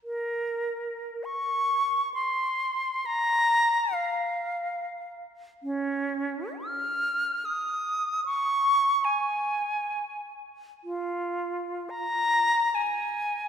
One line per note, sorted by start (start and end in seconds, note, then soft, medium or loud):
0.04 1.26 A#4 medium
1.24 2.13 C#6 medium
2.14 3.07 C6 medium
3.06 3.95 A#5 loud
3.93 5.20 F5 medium
5.63 6.63 C#4 medium
6.62 7.47 F6 medium
7.45 8.24 D#6 medium
8.25 9.06 C#6 loud
9.05 10.32 G#5 medium
10.84 11.91 F4 medium
11.90 12.76 A#5 medium
12.75 13.48 G#5 medium